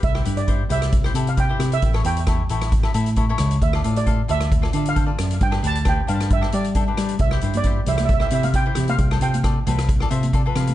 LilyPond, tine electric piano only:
\new Staff \with { instrumentName = "Tine electric piano" } { \clef bass \time 4/4 \key c \major \tempo 4 = 134 c,8 g,4 c,4 c4 c8 | a,,8 e,4 a,,4 a,4 cis,8 | d,8 a,4 d,4 d4 fis,8 | g,8 d,4 g,4 g4 g8 |
c,8 g,4 c,4 c4 c8 | c,8 c4 c,4 c4 c8 | }